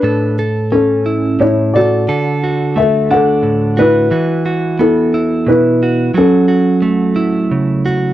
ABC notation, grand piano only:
X:1
M:3/4
L:1/8
Q:1/4=88
K:A
V:1 name="Grand piano"
[DB] z [CA]2 [Ec] [Fd]- | [Fd]2 [Ae] [Af]2 [EB]- | [EB]2 [EA]2 [EB]2 | [CA]4- [CA] z |]